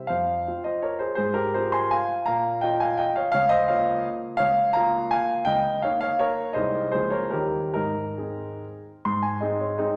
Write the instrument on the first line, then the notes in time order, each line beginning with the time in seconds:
grand piano
Already playing: C3 G3 E4 C5
0.07 F2 C5 F5
0.47 C4 F4
0.64 C5 D#5
0.82 A#4 C#5
0.99 G#4 C5
1.15 G#2 G#4 C5
1.34 G4 A#4
1.54 C4 F4 G#4 C5
1.72 G#5 C6
1.91 F5 G#5
2.26 A#2 F5 A#5
2.61 C#4 F4 D#5 G5
2.80 F5 G#5
2.97 D#5 G5
3.16 C#5 F5
3.32 C#2 C#5 F5
3.49 C5 D#5
3.68 A#3 F4 C#5 F5
4.37 C#2 C#5 F5
4.73 A#3 F4 F5 A#5
5.11 F5 G#5
5.45 C#2 D#5 G5
5.82 A#3 D#4 C#5 F5
6.01 C#5 F5
6.19 A#4 C#5
6.53 C2 G#3 C4 D#4 C5 D#5
6.92 C#2 F3 A#3 F4 G#4 C5
7.10 A#4 C#5
7.31 D#2 G3 C#4 D#4 G4 A#4
7.74 G#2 D#4 A#4
8.18 C4 D#4 G#4
9.05 G#2 C6
9.22 G#5
9.41 G#3 C4 D#4 D#5
9.60 C#5
9.78 G#3 C4 D#4 D#5